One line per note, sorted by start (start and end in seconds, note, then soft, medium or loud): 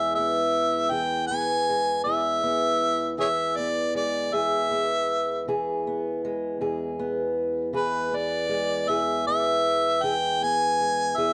0.00 2.06 E2 medium
0.00 0.91 E3 medium
0.00 1.69 G#3 medium
0.00 0.17 B3 soft
0.00 0.91 G#4 medium
0.00 0.15 E5 medium
0.15 1.31 B3 medium
0.15 0.93 E5 medium
0.91 3.18 E3 medium
0.91 2.06 G#4 medium
0.91 1.27 G5 loud
1.27 2.43 B3 medium
1.27 2.00 G#5 loud
1.69 3.95 G#3 medium
2.04 4.33 E2 medium
2.04 3.18 G#4 medium
2.04 3.15 E5 medium
2.43 3.58 B3 medium
3.18 5.47 E3 medium
3.18 4.33 G#4 medium
3.18 3.28 G#4 medium
3.18 3.28 C#5 medium
3.18 3.58 E5 medium
3.57 4.71 B3 medium
3.57 3.95 D5 medium
3.95 6.24 G#3 medium
3.95 4.36 D5 medium
4.33 6.60 E2 medium
4.33 5.48 G#4 medium
4.33 5.48 E5 medium
4.71 5.87 B3 medium
5.48 7.73 E3 medium
5.48 6.61 G#4 medium
5.87 6.99 B3 medium
6.25 8.49 G#3 medium
6.61 8.89 E2 medium
6.61 7.74 G#4 medium
6.99 8.12 B3 medium
7.73 10.02 E3 medium
7.73 8.89 G#4 medium
7.73 8.18 B4 medium
8.12 9.27 B3 medium
8.12 8.91 D5 medium
8.49 10.78 G#3 medium
8.89 11.17 E2 medium
8.89 10.03 G#4 medium
8.89 9.26 E5 medium
9.27 10.42 B3 medium
9.27 10.04 E5 loud
10.03 11.12 E3 medium
10.03 11.13 G#4 medium
10.03 10.45 G5 loud
10.43 11.33 B3 medium
10.43 11.18 G#5 loud
10.81 11.13 G#3 medium
11.17 11.33 E2 medium
11.17 11.33 G#4 medium
11.17 11.33 E5 loud